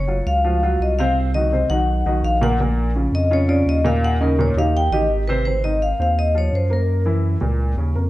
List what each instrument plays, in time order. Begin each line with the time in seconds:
Already playing: sub bass F#1, vibraphone C#5
0.08 grand piano F#3 F4 F#4
0.26 sub bass C#2, vibraphone F5
0.44 grand piano F3 F4 F#4
0.63 grand piano F#3 F4 F#4
0.80 sub bass C2, vibraphone D#5
0.99 grand piano C3 C4 C5, vibraphone F5
1.34 grand piano D#3 D#4 F#4, vibraphone D#5
1.52 grand piano C3 C4 C5
1.70 sub bass B1, grand piano D#3 D#4 F#4, vibraphone F#5
2.06 sub bass B1, grand piano D#3 D#4 F#4
2.23 sub bass A#1, vibraphone F5
2.41 grand piano A#2 A#3 A#4, vibraphone F#5
2.60 grand piano A#2 A#3 A#4
2.95 grand piano C#3 C#4 F4
3.12 sub bass F2, vibraphone D#5
3.31 grand piano C#3 C#4 F4, vibraphone C#5
3.48 grand piano C#3 C#4 F4, vibraphone D5
3.66 sub bass D#2, vibraphone D#5
3.85 grand piano A#2 A#3 A#4, vibraphone F5
4.04 vibraphone F#5
4.20 grand piano C#3 C#4 D#4, vibraphone A#4
4.39 grand piano A#2 A#3 A#4, vibraphone C#5
4.55 sub bass D#2, grand piano D#3 D#4 G4, vibraphone F5
4.77 vibraphone G5
4.91 sub bass A1, grand piano D#3 D#4 G4, vibraphone D#5
5.09 sub bass G#1
5.28 grand piano C3 C4 C5, vibraphone B4
5.45 grand piano C3 C4, vibraphone C5
5.64 grand piano D#3 D#4, vibraphone D#5
5.82 vibraphone F5
5.99 sub bass D#2, grand piano C4 C5, vibraphone F5
6.19 vibraphone D#5
6.35 grand piano F3 F4, vibraphone C#5
6.52 sub bass F#2, vibraphone C5
6.70 grand piano A#3 A#4, vibraphone A#4
7.06 grand piano E3 E4
7.41 sub bass C#2, grand piano A#2 A#3
7.77 sub bass D#2, grand piano C#3 C#4
7.95 sub bass F2, grand piano A#3 A#4